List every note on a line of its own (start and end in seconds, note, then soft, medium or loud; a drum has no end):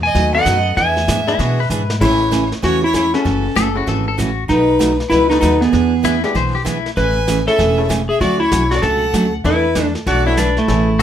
0.00 0.14 E2 medium
0.00 0.34 G#5 loud
0.04 0.33 D#5 loud
0.15 0.45 D#2 medium
0.15 0.35 B2 medium
0.15 0.36 F#3 medium
0.15 0.36 A3 medium
0.15 0.36 D#4 medium
0.15 0.36 F#4 medium
0.15 brush sweep medium
0.15 kick soft
0.15 snare medium
0.34 0.74 A3 medium
0.34 0.74 B3 medium
0.34 0.74 D#4 medium
0.34 0.74 F#4 medium
0.34 0.75 A4 medium
0.34 0.74 D#5 medium
0.34 0.74 F#5 loud
0.45 0.76 F#2 loud
0.45 0.57 B2 medium
0.45 0.57 F#3 medium
0.45 0.57 A3 medium
0.45 0.57 D#4 medium
0.45 0.57 F#4 medium
0.45 kick soft
0.45 snare medium
0.45 hi-hat pedal medium
0.77 1.07 E2 medium
0.77 0.98 E3 soft
0.77 0.98 B3 medium
0.77 0.98 D4 medium
0.77 0.98 G#4 medium
0.77 1.66 E5 medium
0.77 1.66 G#5 medium
0.77 brush sweep soft
0.77 kick soft
0.77 snare soft
0.97 snare soft
1.08 1.38 G#2 medium
1.08 1.19 E3 medium
1.08 1.19 B3 medium
1.08 1.20 D4 medium
1.08 1.20 G#4 medium
1.08 kick soft
1.08 snare medium
1.08 hi-hat pedal medium
1.27 1.37 G#3 medium
1.27 1.38 B3 medium
1.27 1.38 D4 medium
1.27 1.38 E4 medium
1.27 1.39 E4 medium
1.27 1.38 G#4 medium
1.27 snare soft
1.39 1.69 B2 medium
1.39 1.60 E3 medium
1.39 1.60 B3 medium
1.39 1.60 D4 medium
1.39 1.59 F#4 medium
1.39 1.60 G#4 medium
1.39 brush sweep medium
1.39 kick soft
1.39 snare medium
1.60 1.70 B4 medium
1.70 2.00 G#2 medium
1.70 1.81 E3 medium
1.70 1.82 B3 medium
1.70 1.82 D4 medium
1.70 1.82 G#4 medium
1.70 1.95 B4 medium
1.70 hi-hat pedal medium
1.90 snare medium
2.00 2.50 A1 medium
2.00 2.22 C#3 soft
2.00 2.22 E3 medium
2.00 2.18 G#3 medium
2.00 2.18 A3 medium
2.00 2.22 A3 medium
2.00 2.19 C#4 medium
2.00 2.22 C#4 medium
2.00 2.19 E4 medium
2.00 2.48 E4 medium
2.00 2.19 G#4 medium
2.00 2.22 G#4 medium
2.00 2.48 C#5 medium
2.00 brush sweep soft
2.00 kick medium
2.00 snare soft
2.00 crash medium
2.31 2.43 C#3 medium
2.31 2.43 E3 medium
2.31 2.43 A3 medium
2.31 2.43 C#4 medium
2.31 2.43 G#4 medium
2.31 kick soft
2.31 snare medium
2.31 hi-hat pedal medium
2.52 snare soft
2.62 3.13 E2 medium
2.62 2.83 C#3 medium
2.62 2.83 E3 medium
2.62 2.84 A3 medium
2.62 2.84 C#4 medium
2.62 2.84 F#4 loud
2.62 2.84 G#4 medium
2.62 2.85 C#5 medium
2.62 brush sweep soft
2.62 kick soft
2.62 snare soft
2.84 2.95 E4 medium
2.84 2.95 C#5 medium
2.93 3.05 C#3 medium
2.93 3.05 E3 medium
2.93 3.05 A3 medium
2.93 3.05 C#4 medium
2.93 3.15 E4 medium
2.93 3.05 G#4 medium
2.93 3.17 C#5 medium
2.93 kick soft
2.93 snare medium
2.93 hi-hat pedal medium
3.13 3.24 A3 medium
3.13 3.24 C#4 medium
3.13 3.76 C#4 medium
3.13 3.24 E4 medium
3.13 3.24 F#4 medium
3.13 3.24 G#4 medium
3.13 3.77 A4 medium
3.13 snare soft
3.24 3.50 F#1 medium
3.24 3.45 C#3 medium
3.24 3.46 E3 medium
3.24 3.46 A3 medium
3.24 3.46 C#4 medium
3.24 3.46 F#4 medium
3.24 brush sweep soft
3.24 kick soft
3.24 snare soft
3.55 3.82 F#1 medium
3.55 3.67 C#3 medium
3.55 3.67 E3 medium
3.55 3.67 A3 medium
3.55 3.67 C#4 medium
3.55 3.67 F#4 medium
3.55 3.75 A4 loud
3.55 kick soft
3.55 snare medium
3.55 hi-hat pedal medium
3.75 3.86 A3 medium
3.75 3.86 C#4 medium
3.75 3.86 E4 medium
3.75 3.86 F#4 medium
3.75 3.87 F#4 medium
3.75 3.86 G#4 medium
3.87 4.14 G#1 medium
3.87 4.08 C#3 medium
3.87 4.08 E3 medium
3.87 4.08 A3 medium
3.87 4.08 C#4 medium
3.87 4.08 F#4 medium
3.87 4.07 A4 medium
3.87 brush sweep medium
3.87 kick soft
3.87 snare soft
4.08 4.18 A4 medium
4.18 4.44 A1 medium
4.18 4.29 C#3 medium
4.18 4.29 E3 medium
4.18 4.30 A3 medium
4.18 4.30 C#4 medium
4.18 4.30 F#4 medium
4.18 4.43 F#4 medium
4.18 kick soft
4.18 snare medium
4.18 hi-hat pedal medium
4.48 4.99 B1 medium
4.48 4.69 B2 medium
4.48 4.70 F#3 soft
4.48 4.70 A3 medium
4.48 4.96 D#4 medium
4.48 4.70 D#4 medium
4.48 4.70 F#4 medium
4.48 4.96 B4 medium
4.48 brush sweep soft
4.48 kick soft
4.48 snare soft
4.79 4.91 B2 medium
4.79 4.91 F#3 medium
4.79 4.91 A3 medium
4.79 4.91 D#4 medium
4.79 4.91 F#4 medium
4.79 kick soft
4.79 snare medium
4.79 hi-hat pedal medium
5.00 snare soft
5.09 5.37 C#2 medium
5.09 5.31 B2 medium
5.09 5.31 F#3 medium
5.09 5.31 A3 medium
5.09 5.32 D#4 medium
5.09 5.29 E4 loud
5.09 5.32 F#4 medium
5.09 5.29 B4 loud
5.09 brush sweep soft
5.09 kick soft
5.09 snare soft
5.29 5.71 A3 medium
5.29 5.71 B3 medium
5.29 5.39 D#4 medium
5.29 5.71 D#4 medium
5.29 5.71 F#4 medium
5.29 5.71 A4 medium
5.29 5.40 B4 medium
5.29 snare soft
5.41 5.68 D#2 medium
5.41 5.53 B2 medium
5.41 5.53 F#3 medium
5.41 5.53 A3 medium
5.41 5.62 D#4 medium
5.41 5.53 D#4 medium
5.41 5.53 F#4 medium
5.41 5.60 B4 medium
5.41 kick soft
5.41 snare medium
5.41 hi-hat pedal medium
5.60 6.19 B3 medium
5.60 6.19 G#4 medium
5.60 snare soft
5.72 6.22 E2 medium
5.72 5.93 E3 medium
5.72 5.93 B3 medium
5.72 5.94 D4 medium
5.72 5.94 G#4 medium
5.72 brush sweep soft
5.72 kick soft
5.72 snare soft
6.03 6.15 E3 medium
6.03 6.15 B3 medium
6.03 6.15 D4 medium
6.03 6.23 E4 loud
6.03 6.15 G#4 medium
6.03 kick soft
6.03 snare medium
6.03 hi-hat pedal medium
6.24 6.34 G#3 medium
6.24 6.34 B3 medium
6.24 6.34 D4 medium
6.24 6.34 E4 medium
6.24 6.35 G4 medium
6.24 6.34 G#4 medium
6.24 snare soft
6.35 6.84 B1 medium
6.35 6.55 E3 medium
6.35 6.55 B3 medium
6.35 6.56 D4 medium
6.35 6.56 G#4 medium
6.35 6.55 C5 medium
6.35 brush sweep medium
6.35 kick soft
6.35 snare soft
6.55 6.64 G4 medium
6.65 6.77 E3 medium
6.65 6.77 B3 medium
6.65 6.77 D4 medium
6.65 6.90 E4 loud
6.65 6.77 G#4 medium
6.65 kick soft
6.65 snare medium
6.65 hi-hat pedal medium
6.86 snare soft
6.96 7.46 A1 medium
6.96 7.17 C#3 soft
6.96 7.17 E3 medium
6.96 7.17 A3 medium
6.96 7.18 C#4 medium
6.96 7.18 G#4 medium
6.96 7.47 B4 loud
6.96 7.44 G#5 loud
6.96 brush sweep soft
6.96 kick soft
6.96 snare soft
7.27 7.39 C#3 medium
7.27 7.39 E3 medium
7.27 7.39 A3 medium
7.27 7.39 C#4 medium
7.27 7.39 G#4 medium
7.27 kick soft
7.27 snare medium
7.27 hi-hat pedal medium
7.47 7.57 A3 medium
7.47 7.57 C#4 medium
7.47 7.58 E4 medium
7.47 7.57 G#4 medium
7.47 7.58 A4 medium
7.47 7.87 A4 loud
7.47 7.86 E5 medium
7.47 snare soft
7.58 8.08 E1 medium
7.58 7.79 C#3 medium
7.58 7.79 E3 medium
7.58 7.79 A3 medium
7.58 7.79 C#4 medium
7.58 7.79 G#4 medium
7.58 brush sweep soft
7.58 kick soft
7.58 snare soft
7.78 7.88 A3 medium
7.78 7.88 C#4 medium
7.78 7.88 E4 medium
7.78 7.88 G#4 medium
7.78 7.88 A4 medium
7.89 8.01 C#3 medium
7.89 8.01 E3 medium
7.89 8.01 A3 medium
7.89 8.01 C#4 medium
7.89 8.01 G#4 medium
7.89 kick soft
7.89 snare medium
7.89 hi-hat pedal medium
8.09 8.21 G#4 loud
8.09 8.20 E5 medium
8.21 8.45 D2 medium
8.21 8.41 D3 soft
8.21 8.41 F#3 medium
8.21 8.41 A3 medium
8.21 8.42 C#4 medium
8.21 8.39 F#4 loud
8.21 8.42 F#4 medium
8.21 8.39 D5 medium
8.21 brush sweep soft
8.21 kick soft
8.21 snare soft
8.40 8.72 E4 medium
8.40 8.69 C#5 medium
8.51 8.78 B1 medium
8.51 8.63 D3 medium
8.51 8.63 F#3 medium
8.51 8.63 A3 medium
8.51 8.63 C#4 medium
8.51 8.63 F#4 medium
8.51 kick soft
8.51 snare medium
8.51 hi-hat pedal medium
8.71 8.81 A3 medium
8.71 8.81 C#4 medium
8.71 8.81 D4 medium
8.71 8.83 F#4 medium
8.71 8.82 F#4 medium
8.71 8.82 A4 medium
8.71 8.85 D5 medium
8.71 snare soft
8.82 9.09 C#2 medium
8.82 9.03 D3 medium
8.82 9.03 F#3 medium
8.82 9.03 A3 medium
8.82 9.03 C#4 medium
8.82 9.04 F#4 medium
8.82 9.33 A4 loud
8.82 9.33 F#5 medium
8.82 brush sweep soft
8.82 kick soft
8.82 snare soft
9.13 9.40 D2 medium
9.13 9.25 D3 medium
9.13 9.25 F#3 medium
9.13 9.25 A3 medium
9.13 9.25 C#4 medium
9.13 9.25 F#4 medium
9.13 kick soft
9.13 snare medium
9.13 hi-hat pedal medium
9.44 9.94 E2 loud
9.44 9.65 E3 medium
9.44 9.62 A3 medium
9.44 9.65 A3 medium
9.44 9.62 B3 medium
9.44 9.62 D4 medium
9.44 9.65 D4 medium
9.44 9.62 E4 medium
9.44 9.65 E4 medium
9.44 9.92 E4 medium
9.44 9.62 A4 medium
9.44 9.66 A4 medium
9.44 9.92 B4 medium
9.44 brush sweep soft
9.44 kick soft
9.44 snare soft
9.75 9.87 E3 medium
9.75 9.87 A3 medium
9.75 9.87 D4 medium
9.75 9.87 E4 medium
9.75 9.87 A4 medium
9.75 kick soft
9.75 snare medium
9.75 hi-hat pedal medium
9.95 snare soft
10.06 10.56 B1 medium
10.06 10.27 E3 medium
10.06 10.27 A3 medium
10.06 10.27 D4 medium
10.06 10.27 E4 medium
10.06 10.25 F#4 medium
10.06 10.27 A4 medium
10.06 10.27 D5 medium
10.06 brush sweep soft
10.06 kick soft
10.06 snare soft
10.26 10.36 A3 medium
10.26 10.36 B3 medium
10.26 10.36 D4 medium
10.26 10.36 E4 medium
10.26 10.38 E4 medium
10.26 10.36 F#4 medium
10.26 10.37 C#5 medium
10.37 10.49 E3 medium
10.37 10.49 A3 medium
10.37 10.58 D4 medium
10.37 10.49 D4 medium
10.37 10.49 E4 medium
10.37 10.49 A4 medium
10.37 10.56 B4 medium
10.37 kick soft
10.37 snare medium
10.37 hi-hat pedal medium
10.57 11.02 A3 medium
10.57 11.02 E4 medium
10.57 snare soft
10.68 11.02 A1 loud
10.68 10.89 C#3 medium
10.68 10.89 E3 medium
10.68 10.86 A3 medium
10.68 10.90 A3 medium
10.68 10.86 C#4 medium
10.68 10.90 C#4 medium
10.68 10.86 E4 medium
10.68 10.86 G#4 medium
10.68 10.90 G#4 medium
10.68 10.86 A4 medium
10.68 brush sweep soft
10.68 kick soft
10.68 snare soft
10.99 11.02 G#4 medium